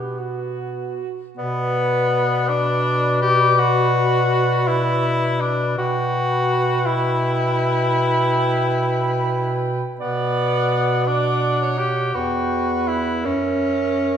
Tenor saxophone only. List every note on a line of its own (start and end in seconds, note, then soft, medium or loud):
0.00 1.01 B3 soft
1.37 2.50 B3 loud
2.49 3.21 D4 loud
3.22 3.60 G4 loud
3.58 4.69 F#4 medium
4.68 5.42 E4 loud
5.41 5.77 D4 medium
5.78 6.87 F#4 medium
6.86 9.75 E4 medium
10.00 11.09 B3 loud
11.07 11.79 D4 medium
11.78 12.16 G4 medium
12.14 12.89 F#4 medium
12.88 13.26 E4 medium
13.25 14.17 C#4 medium